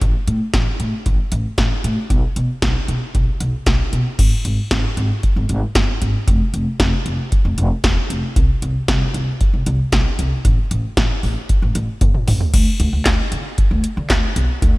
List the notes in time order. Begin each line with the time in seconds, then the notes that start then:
0.01 A1, kick, closed hi-hat
0.28 A2, closed hi-hat
0.54 A1, kick, snare, closed hi-hat
0.80 A2, closed hi-hat
1.06 A1, kick, closed hi-hat
1.32 A1, closed hi-hat
1.58 A1, kick, snare, closed hi-hat
1.84 A2, closed hi-hat
2.10 B1, kick, closed hi-hat
2.36 B2, closed hi-hat
2.62 B1, kick, snare, closed hi-hat
2.88 B2, closed hi-hat
3.15 B1, kick, closed hi-hat
3.40 B1, closed hi-hat
3.66 B1, kick, snare, closed hi-hat
3.93 B2, closed hi-hat
4.19 G#1, kick, closed hi-hat, crash
4.45 G#1, closed hi-hat
4.71 G#1, kick, snare, closed hi-hat
4.97 G#1, closed hi-hat
5.23 kick, closed hi-hat
5.36 G#1
5.49 G#1, closed hi-hat
5.75 G1, kick, snare, closed hi-hat
6.02 G#1, closed hi-hat
6.28 F1, kick, closed hi-hat
6.54 F1, closed hi-hat
6.80 F1, kick, snare, closed hi-hat
7.06 F1, closed hi-hat
7.32 kick, closed hi-hat
7.45 F1
7.58 F1, closed hi-hat
7.84 E1, kick, snare, closed hi-hat
8.10 F1, closed hi-hat
8.36 C2, kick, closed hi-hat
8.62 C2, closed hi-hat
8.88 C2, kick, snare, closed hi-hat
9.14 C2, closed hi-hat
9.41 kick, closed hi-hat
9.54 C2
9.66 C2, closed hi-hat
9.92 B1, kick, snare, closed hi-hat
10.19 C2, closed hi-hat
10.45 A1, kick, closed hi-hat
10.71 A1, closed hi-hat
10.97 A1, kick, snare, closed hi-hat
11.23 A1, open hi-hat
11.49 kick, closed hi-hat
11.62 A1
11.75 A1, closed hi-hat
12.01 G1, kick, closed hi-hat, high tom
12.14 mid tom
12.28 A1, mid tom, open hi-hat
12.41 floor tom
12.54 D2, kick, closed hi-hat, crash
12.80 D2, closed hi-hat
12.93 D2
13.06 D2, kick, snare, clap, closed hi-hat
13.32 D3, closed hi-hat
13.58 kick, closed hi-hat
13.71 D2
13.84 closed hi-hat
13.97 D3
14.10 D2, kick, snare, clap, closed hi-hat
14.36 B1, closed hi-hat
14.62 D2, kick, closed hi-hat